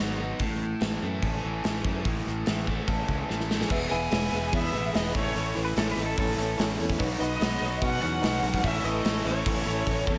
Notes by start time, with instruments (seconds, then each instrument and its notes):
Already playing: overdriven electric guitar F#3 B3 D#4 F#4
0.00 fingered electric bass G#1, overdriven electric guitar F#3 B3
0.19 overdriven electric guitar B3 D#4
0.39 fingered electric bass A1, overdriven electric guitar A2, kick, open hi-hat
0.81 fingered electric bass A1, overdriven electric guitar E3, snare, open hi-hat
1.02 fingered electric bass F#2, overdriven electric guitar A3
1.22 fingered electric bass A1, overdriven electric guitar C#4 A4, kick, open hi-hat
1.44 fingered electric bass A1, overdriven electric guitar E3 C#4
1.64 fingered electric bass A1, overdriven electric guitar E3 A3, snare, open hi-hat
1.84 fingered electric bass F#2, overdriven electric guitar A3 C#4, kick
2.05 fingered electric bass A1, overdriven electric guitar A2, kick, open hi-hat
2.27 fingered electric bass A1, snare
2.46 fingered electric bass A1, overdriven electric guitar E3, snare, open hi-hat
2.67 overdriven electric guitar A3, kick
2.88 fingered electric bass A1, overdriven electric guitar C#4 A4, kick, open hi-hat
3.08 fingered electric bass C#2, overdriven electric guitar E3 C#4, kick
3.29 fingered electric bass A1, overdriven electric guitar E3 A3, snare
3.40 snare
3.49 overdriven electric guitar A3 C#4, snare
3.61 snare
3.69 fingered electric bass E1, overdriven electric guitar E2 B2 E3 G#3 B3 E4, string machine E4 G#4 B4 E5, reed electric piano G#4 B4 E5, kick, crash
3.89 fingered electric bass E1, overdriven electric guitar E3 G#3 B3 E4, cor anglais E4, reed electric piano G#4 B4 E5, lead electric guitar G#5, open hi-hat
4.10 fingered electric bass E1, overdriven electric guitar E3 G#3 B3 E4, reed electric piano G#4 B4 C#5, snare, open hi-hat
4.31 fingered electric bass E1, overdriven electric guitar E2 B2 E3 G#3 B3 E4, reed electric piano G#4 B4 F#5, open hi-hat
4.52 fingered electric bass E2, overdriven electric guitar E3 G#3 B3 E4, cor anglais B3, reed electric piano G#4 B4 C#5, lead electric guitar E5, kick, open hi-hat
4.73 fingered electric bass A1, overdriven electric guitar E2 B2 E3 G#3 B3 E4, reed electric piano G#4 B4 E5, open hi-hat
4.93 fingered electric bass E1, overdriven electric guitar E3 G#3 B3 E4, cor anglais B3, reed electric piano G#4 B4 E5, lead electric guitar D#5, snare, open hi-hat
5.14 fingered electric bass A1, overdriven electric guitar A2 E3 A3 C#4 E4, cor anglais A3, reed electric piano E4 A4 C#5, string machine E4 A4 C#5 E5, lead electric guitar C#5, kick, open hi-hat
5.34 fingered electric bass A1, overdriven electric guitar A2 E3 A3 C#4 E4, open hi-hat
5.55 fingered electric bass A1, overdriven electric guitar A3 C#4 E4, reed electric piano E4 A4 B4, open hi-hat
5.65 electric slide guitar B4
5.75 fingered electric bass A1, overdriven electric guitar E3 A3 C#4 E4, reed electric piano E4 A4 C#5, electric slide guitar A4, snare, open hi-hat
5.91 electric slide guitar B4
5.96 fingered electric bass A1, overdriven electric guitar A2 E3 A3 C#4 E4, reed electric piano E4 A4 D#5, open hi-hat
6.06 electric slide guitar A4
6.16 fingered electric bass A1, overdriven electric guitar E3 A3 C#4 E4, reed electric piano E4 A4 C#5, electric slide guitar A4, kick, open hi-hat
6.36 fingered electric bass A1, overdriven electric guitar A2 E3 A3 C#4 E4, reed electric piano E4 A4 C#5, open hi-hat
6.57 fingered electric bass A1, overdriven electric guitar E3 A3 C#4, reed electric piano E4 A4 C#5, snare, open hi-hat
6.61 overdriven electric guitar E4
6.77 fingered electric bass E2, overdriven electric guitar C#4 E4, reed electric piano E4 A4 C#5, open hi-hat
6.82 overdriven electric guitar A3
6.90 kick
6.98 fingered electric bass B1, overdriven electric guitar B2 F#3 B3 D#4 F#4, reed electric piano D#4 B4 C#5, string machine D#4 F#4 B4 C#5, kick, open hi-hat
7.18 fingered electric bass B1, cor anglais B3, reed electric piano D#4 B4 D#5, overdriven electric guitar D#4 F#4, lead electric guitar D#5, open hi-hat
7.22 overdriven electric guitar B3
7.40 fingered electric bass B1, overdriven electric guitar F#3 B3 D#4 F#4, reed electric piano D#4 B4 C#5, snare, open hi-hat
7.60 fingered electric bass B1, overdriven electric guitar B2 F#3 B3 D#4 F#4, reed electric piano D#4 B4 C#5, open hi-hat
7.80 fingered electric bass B2, overdriven electric guitar F#3 B3 D#4 F#4, cor anglais C#4, reed electric piano D#4 B4 D#5, lead electric guitar F#5, kick, open hi-hat
8.01 fingered electric bass E2, overdriven electric guitar B2 F#3 B3 D#4 F#4, cor anglais C#4, reed electric piano D#4 B4 C#5, lead electric guitar F#5, open hi-hat
8.22 fingered electric bass B1, overdriven electric guitar F#3 B3 D#4 F#4, reed electric piano D#4 B4 D#5, snare, open hi-hat
8.42 fingered electric bass B1, overdriven electric guitar B3 D#4 F#4, reed electric piano D#4 B4 C#5, open hi-hat
8.54 kick
8.63 fingered electric bass A1, overdriven electric guitar A2 E3 A3 C#4 E4, string machine C#4 E4 A4 C#5, cor anglais C#4, reed electric piano E4 A4 C#5, lead electric guitar E5, kick, open hi-hat
8.83 fingered electric bass A1, cor anglais A3, overdriven electric guitar A3 C#4 E4, reed electric piano E4 A4 B4, lead electric guitar D#5, open hi-hat
9.04 fingered electric bass A1, overdriven electric guitar E3 A3 C#4 E4, snare, open hi-hat
9.24 fingered electric bass A1, overdriven electric guitar A2 E3 A3 C#4 E4, cor anglais A3, reed electric piano E4 A4 E5, lead electric guitar C#5, open hi-hat
9.45 fingered electric bass A1, overdriven electric guitar E3 A3 C#4 E4, reed electric piano E4 A4 C#5, kick, open hi-hat
9.66 fingered electric bass A1, overdriven electric guitar A2 E3 A3 C#4 E4, reed electric piano E4 A4 C#5, open hi-hat
9.86 fingered electric bass A1, overdriven electric guitar E3 A3 C#4 E4, reed electric piano E4 A4 C#5, kick
10.06 fingered electric bass E2, overdriven electric guitar A3 C#4 E4, reed electric piano E4 A4 C#5, kick